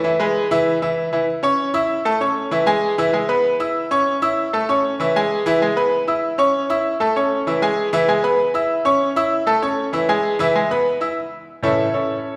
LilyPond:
<<
  \new Staff \with { instrumentName = "Grand piano" } { \time 4/4 \key a \major \tempo 4 = 194 <e e' e''>8 <gis gis' b'>4 <e e' e''>4 <e e' e''>4 <e e' e''>8 | r8 <cis' cis'' cis'''>4 <e' e'' e'''>4 <a a' a''>8 <cis' cis'' cis'''>4 | <e e' e''>8 <gis gis' gis''>4 <e e' e''>8 <gis gis' gis''>8 <b b' b''>4 <e' e'' e'''>8~ | <e' e'' e'''>8 <cis' cis'' cis'''>4 <e' e'' e'''>4 <a a' a''>8 <cis' cis'' cis'''>4 |
<e e' e''>8 <gis gis' gis''>4 <e e' e''>8 <gis gis' gis''>8 <b b' b''>4 <e' e'' e'''>8~ | <e' e'' e'''>8 <cis' cis'' cis'''>4 <e' e'' e'''>4 <a a' a''>8 <cis' cis'' cis'''>4 | <e e' e''>8 <gis gis' gis''>4 <e e' e''>8 <gis gis' gis''>8 <b b' b''>4 <e' e'' e'''>8~ | <e' e'' e'''>8 <cis' cis'' cis'''>4 <e' e'' e'''>4 <a a' a''>8 <cis' cis'' cis'''>4 |
<e e' e''>8 <gis gis' gis''>4 <e e' e''>8 <gis gis' gis''>8 <b b' b''>4 <e' e'' e'''>8 | r4. <e' a' cis'' e''>4 <cis' e' a' cis''>4. | }
  \new Staff \with { instrumentName = "Grand piano" } { \clef bass \time 4/4 \key a \major r1 | r1 | r1 | r1 |
r1 | r1 | r1 | r1 |
r1 | r4. <a, e cis'>8 r2 | }
>>